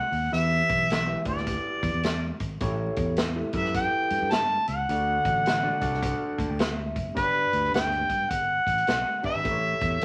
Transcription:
Already playing: F#5
0.12 D#2, open hi-hat
0.32 E2 E3 E4 G4 B4 E5, closed hi-hat
0.69 B1, kick, closed hi-hat
0.90 snare, closed hi-hat
1.07 E4 G4 B4 E5
1.25 D2 E4 G4 B4 D5, kick, closed hi-hat
1.37 snare
1.47 kick, closed hi-hat
1.83 E2, kick, closed hi-hat
1.94 E2
2.03 snare, closed hi-hat
2.40 G#1, kick, closed hi-hat
2.60 A1 A2 E4 G4 A4 C#5, kick, closed hi-hat
2.96 E2, kick, closed hi-hat
3.17 snare, closed hi-hat
3.36 E4 G4 A4 E5
3.53 F#2 E4 G4 A4 A#4 E5, kick, closed hi-hat
3.61 B4, snare
3.74 G5, kick, closed hi-hat
4.10 G2, closed hi-hat
4.22 G2
4.31 A5, snare, closed hi-hat
4.68 C#2 F#5, closed hi-hat
4.89 D2 D3 D4 F#4 A4 D5, closed hi-hat
5.25 A1, kick, closed hi-hat
5.46 snare, closed hi-hat
5.63 D4 F#4 A4 D5
5.80 C2 D4 F#4 A4 D5, kick, closed hi-hat
5.94 snare
6.03 kick, closed hi-hat
6.38 D2 A5, kick, closed hi-hat
6.49 D2 G5
6.59 F#5, snare, closed hi-hat
6.77 E5
6.96 F#1, kick, closed hi-hat
7.15 G1 G2 D4 G4 B4 C#5, kick, closed hi-hat
7.23 D5
7.53 D2, closed hi-hat
7.64 snare
7.74 D2 G5, snare, closed hi-hat
7.92 closed hi-hat
8.10 G2, kick, closed hi-hat
8.30 G1 F#5, kick, closed hi-hat
8.67 A1, kick, closed hi-hat
8.78 closed hi-hat
8.87 B1, snare, closed hi-hat
9.23 G1 D4 G4 B4 E5, kick, open hi-hat
9.35 G#1
9.43 A1 A2 E4 G4 A4 B4, kick, closed hi-hat
9.51 C#5
9.81 E2, kick, closed hi-hat
10.01 closed hi-hat

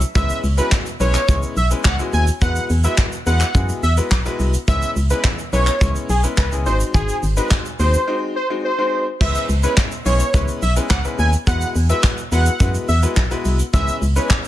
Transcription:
0.01 closed hi-hat, shaker
0.15 C#2 G#3 B3 C#4 E4 B4 E5, kick, shaker
0.29 closed hi-hat, shaker
0.44 C#2, open hi-hat, shaker
0.57 G#3 B3 C#4 E4 F#4 B4, closed hi-hat, shaker
0.71 kick, snare, clap, shaker
0.86 closed hi-hat, shaker
1.00 B1 G#3 B3 C#4 E4 B4 C#5, open hi-hat, shaker
1.14 clap, closed hi-hat, shaker
1.28 C#2 G#3 B3 C#4 E4 C#5, kick, shaker
1.43 closed hi-hat, shaker
1.57 B1 E5, open hi-hat, shaker
1.71 G#3 B3 C#4 E4 B4, closed hi-hat, shaker
1.84 C#2 F#5, kick, snare, clap, shaker
1.99 G#3 B3 C#4 E4 F#4, closed hi-hat, shaker
2.13 D#2 G#5, open hi-hat, shaker
2.27 closed hi-hat, shaker
2.41 E2 G#3 B3 E4 F#4 B4 F#5, kick, shaker
2.56 closed hi-hat, shaker
2.70 E2, open hi-hat, shaker
2.84 G#3 B3 E4 F#4 B4 E5, closed hi-hat, shaker
2.97 kick, snare, clap, shaker
3.12 closed hi-hat, shaker
3.26 E2 G#3 B3 E4 F#4 B4 F#5, open hi-hat, shaker
3.40 clap, closed hi-hat, shaker
3.54 F#2 G#3 B3 E4 F#4 G#4, kick, shaker
3.69 closed hi-hat, shaker
3.83 E2 E5, open hi-hat, shaker
3.97 G#3 B3 E4 F#4 B4, closed hi-hat, shaker
4.11 B1, kick, snare, clap, shaker
4.25 G#3 B3 E4 F#4 B4, closed hi-hat, shaker
4.40 C2, open hi-hat, shaker
4.54 closed hi-hat, shaker
4.68 C#2 G#3 B3 C#4 E4 B4 E5, kick, shaker
4.82 closed hi-hat, shaker
4.96 C#2, open hi-hat, shaker
5.10 G#3 B3 C#4 E4 B4, closed hi-hat, shaker
5.24 kick, snare, clap, shaker
5.38 closed hi-hat, shaker
5.53 B1 G#3 B3 C#4 E4 B4 C#5, open hi-hat, shaker
5.67 clap, closed hi-hat, shaker
5.81 C#2 G#3 B3 C#4 E4 C#5, kick, shaker
5.95 closed hi-hat, shaker
6.09 B1 G#4, open hi-hat, shaker
6.23 G#3 B3 C#4 E4 B4, closed hi-hat, shaker
6.37 C#2 B4, kick, snare, clap, shaker
6.52 G#3 B3 C#4 E4 G#4, closed hi-hat, shaker
6.66 G#1 G#3 C4 D#4 F#4 C5, open hi-hat, shaker
6.80 closed hi-hat, shaker
6.94 G#1 G#4, kick, shaker
7.09 closed hi-hat, shaker
7.23 G#1, open hi-hat, shaker
7.37 G#3 C4 D#4 F#4 B4 C5, closed hi-hat, shaker
7.50 kick, snare, clap, shaker
7.65 closed hi-hat, shaker
7.79 D#2 G#3 C4 D#4 F#4 C5, open hi-hat, shaker
7.94 closed hi-hat, shaker
8.07 G#3 C4 D#4 F#4 C5
8.36 C5
8.50 G#3 C4 D#4 F#4 C5
8.64 C5
8.78 G#3 C4 D#4 F#4 C5
9.21 C#2 G#3 B3 C#4 E4 B4 E5, kick, crash
9.35 closed hi-hat, shaker
9.49 C#2, open hi-hat, shaker
9.63 G#3 B3 C#4 E4 B4 C#5, closed hi-hat, shaker
9.77 kick, snare, clap, shaker
9.91 closed hi-hat, shaker
10.05 B1 G#3 B3 C#4 E4 G#4 C#5, open hi-hat, shaker
10.20 closed hi-hat, shaker
10.34 C#2 G#3 B3 C#4 E4 B4, kick, shaker
10.48 closed hi-hat, shaker
10.62 B1 E5, open hi-hat, shaker
10.76 G#3 B3 C#4 E4 B4, closed hi-hat, shaker
10.90 C#2 F#5, kick, snare, clap, shaker
11.04 G#3 B3 C#4 E4 B4, closed hi-hat, shaker
11.19 D#2 G#5, open hi-hat, shaker
11.33 closed hi-hat, shaker
11.47 E2 G#3 B3 E4 F#4 B4 F#5, kick, shaker
11.61 closed hi-hat, shaker
11.75 E2, open hi-hat, shaker
11.89 G#3 B3 E4 F#4 B4 E5, closed hi-hat, shaker
12.03 kick, snare, clap, shaker
12.18 closed hi-hat, shaker
12.32 E2 G#3 B3 E4 F#4 B4 F#5, open hi-hat, shaker
12.46 closed hi-hat, shaker
12.60 F#2 G#3 B3 E4 F#4 B4, kick, shaker
12.74 closed hi-hat, shaker
12.88 E2 E5, open hi-hat, shaker
13.02 G#3 B3 E4 F#4 B4, closed hi-hat, shaker
13.16 B1, kick, snare, clap, shaker
13.31 G#3 B3 E4 F#4 B4, closed hi-hat, shaker
13.45 C2, open hi-hat, shaker
13.59 closed hi-hat, shaker
13.73 C#2 G#3 B3 C#4 E4 B4 E5, kick, shaker
13.88 closed hi-hat, shaker
14.02 C#2, open hi-hat, shaker
14.16 G#3 B3 C#4 E4 B4 C#5, closed hi-hat, shaker
14.30 kick, snare, clap, shaker
14.44 closed hi-hat, shaker

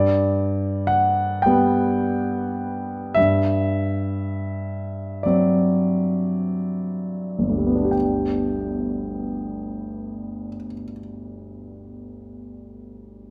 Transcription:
Already playing: G2 D5
0.87 F#5
1.42 G3 B3 G5
3.14 G2 E5
5.23 F#3 C4 D5
7.39 G1
7.48 D2
7.57 G3
7.67 B3
7.76 D4
7.85 G4
7.91 G5

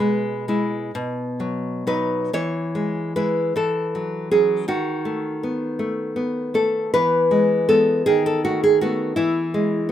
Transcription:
Already playing: B2 B4
0.00 G#3
0.48 G#3 E4
0.95 B2
1.40 F#3
1.87 F#3 D#4 B4
2.33 E3 C#5
2.75 G#3
3.16 G#3 E4 B4
3.56 E3 A4
3.95 F#3
4.31 F#3 C#4 G#4
4.68 D#3 F#4
5.05 A3
5.43 B3
5.79 A3
6.16 B3
6.54 A3 A4
6.94 E3 B4
7.31 G#3
7.69 G#3 B3 A4
8.06 D#3 G#4
8.26 A4
8.44 A3 F#4
8.64 G#4
8.81 A3 B3 F#4
9.16 E3 E4
9.54 G#3

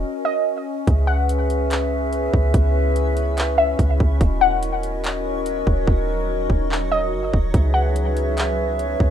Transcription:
Already playing: C#4 F#4 A#4 D#5
0.25 D#5
0.87 C#2 B3 E4 G#4 B4 C#5 E5, kick, closed hi-hat
1.07 F#5
1.29 closed hi-hat
1.50 closed hi-hat
1.71 clap, closed hi-hat
2.13 closed hi-hat
2.34 C#2, kick
2.54 C#2, kick, closed hi-hat
2.96 closed hi-hat
3.17 closed hi-hat
3.38 clap, closed hi-hat
3.58 E5
3.79 C#2, kick, closed hi-hat
4.00 C#2, kick
4.21 D#1 F#3 D#4 F#4 D#5, kick, closed hi-hat
4.41 F#5
4.63 closed hi-hat
4.83 closed hi-hat
5.04 clap, closed hi-hat
5.46 closed hi-hat
5.67 D#1, kick
5.87 D#1, kick
6.50 D#1, kick
6.72 clap
6.92 D#5
7.12 F#1
7.34 D#1, kick
7.54 C#2 B3 C#4 E4 G#4 B4 E5, kick, closed hi-hat
7.74 F#5
7.96 closed hi-hat
8.17 closed hi-hat
8.37 clap, closed hi-hat
8.79 closed hi-hat
9.00 C#2, kick

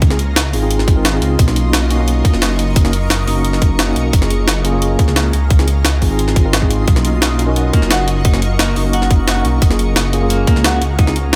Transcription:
Already playing: C#2 D#5
0.02 kick, closed hi-hat
0.10 C4 D#4 F4 G#4, snare
0.19 closed hi-hat
0.36 snare, closed hi-hat
0.53 G#1 C4 D#4 F4 G#4, open hi-hat
0.62 C4 D#4 F4 G#4
0.71 closed hi-hat
0.79 snare
0.88 kick, closed hi-hat
0.96 C4 D#4 F4 A#4
1.05 snare, closed hi-hat
1.13 C4 D#4 F4 G#4
1.22 C#2, closed hi-hat
1.39 B1 A#4 C#6, kick, closed hi-hat
1.47 A#3 C#4 D#4 F#4, snare
1.56 closed hi-hat
1.73 snare, closed hi-hat
1.90 A#3 C#4 D#4 F#4, closed hi-hat
1.98 A#3 C#4 D#4 F#4
2.08 closed hi-hat
2.25 kick, closed hi-hat
2.33 F#1, snare
2.42 snare, closed hi-hat
2.59 closed hi-hat
2.76 kick, closed hi-hat
2.84 A#3 C#4 D#4 F#4, snare
2.93 closed hi-hat
3.10 snare, closed hi-hat
3.27 F#1 A#3 C#4 D#4 F#4, open hi-hat
3.35 A#3 C#4 D#4 F#4
3.45 closed hi-hat
3.53 snare
3.62 kick, closed hi-hat
3.79 snare, closed hi-hat
3.87 A#3 C#4 D#4 F#4
3.96 B1, closed hi-hat
4.13 F#1, kick, closed hi-hat
4.21 A#3 C#4 F4 G#4, snare
4.30 closed hi-hat
4.48 snare, closed hi-hat
4.64 A#3 C#4 F4 G#4, closed hi-hat
4.72 A#3 C#4 F4 G#4
4.82 closed hi-hat
4.99 kick, closed hi-hat
5.08 C#2, snare
5.16 snare, closed hi-hat
5.33 C#2 D#5, closed hi-hat
5.50 kick, closed hi-hat
5.59 C4 D#4 F4 G#4, snare
5.68 closed hi-hat
5.85 snare, closed hi-hat
6.01 G#1 C4 D#4 F4 G#4, kick, open hi-hat
6.10 C4 D#4 F4 G#4
6.19 closed hi-hat
6.28 snare
6.36 G#1, kick, closed hi-hat
6.45 C4 D#4 F4 A#4
6.53 snare, closed hi-hat
6.61 C4 D#4 F4 G#4, kick
6.71 closed hi-hat
6.88 B1 A#4 C#6, kick, closed hi-hat
6.95 A#3 C#4 D#4 F#4, snare
7.05 closed hi-hat
7.22 snare, closed hi-hat
7.39 A#3 C#4 D#4 F#4, closed hi-hat
7.47 C#4 D#4 F#4 A#4
7.56 B3, closed hi-hat
7.73 A#3, kick, closed hi-hat
7.82 F#1, snare
7.90 F#4, snare, closed hi-hat
8.08 closed hi-hat
8.25 D#4, kick, closed hi-hat
8.33 A#3 C#4 D#4 F#4, snare
8.42 closed hi-hat
8.59 A#3, snare, closed hi-hat
8.76 F#1 A#3 C#4 D#4 F#4, open hi-hat
8.84 A#3 C#4 D#4 F#4
8.93 F#4, closed hi-hat
9.02 snare
9.11 kick, closed hi-hat
9.28 F#4, snare, closed hi-hat
9.36 A#3 C#4 D#4 F#4
9.45 B1, closed hi-hat
9.62 F#1, kick, closed hi-hat
9.70 A#3 C#4 F4 G#4, snare
9.79 closed hi-hat
9.96 snare, closed hi-hat
10.13 A#3 C#4 F4 G#4, closed hi-hat
10.21 A#3 C#4 F4 G#4
10.30 A#3, closed hi-hat
10.47 A#3, kick, closed hi-hat
10.56 C#2, snare
10.64 F#4, snare, closed hi-hat
10.82 C#2, closed hi-hat
10.99 D#4, kick, closed hi-hat
11.07 C4 D#4 F4 G#4, snare
11.16 closed hi-hat

